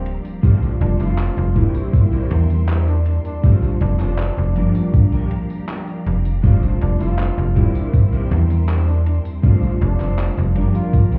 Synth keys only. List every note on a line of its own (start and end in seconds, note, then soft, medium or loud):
0.00 0.36 F3 medium
0.00 0.36 G3 medium
0.00 0.37 A#3 medium
0.00 0.37 D4 loud
0.42 1.48 G3 medium
0.42 1.48 A3 medium
0.42 1.49 C4 medium
0.42 1.49 D4 medium
0.42 1.49 F4 medium
1.54 3.35 G3 medium
1.54 3.36 A#3 medium
1.54 3.36 C4 medium
1.54 3.36 D4 medium
1.54 3.37 E4 loud
3.42 4.48 G3 medium
3.42 4.48 A3 medium
3.42 4.49 C4 medium
3.42 4.49 D4 medium
3.42 4.49 F4 medium
4.55 6.36 F3 medium
4.55 6.36 G3 medium
4.55 6.37 A#3 medium
4.55 6.37 D4 loud
6.43 7.48 G3 medium
6.43 7.49 A3 medium
6.43 7.49 C4 medium
6.43 7.49 D4 medium
6.43 7.50 F4 medium
7.55 9.36 G3 medium
7.55 9.36 A#3 medium
7.55 9.36 C4 medium
7.55 9.37 D4 medium
7.55 9.37 E4 loud
9.42 10.48 G3 medium
9.42 10.48 A3 medium
9.42 10.49 C4 medium
9.42 10.49 D4 medium
9.42 10.49 F4 medium
10.55 11.19 F3 medium
10.55 11.19 G3 medium
10.55 11.19 A#3 medium
10.55 11.19 D4 loud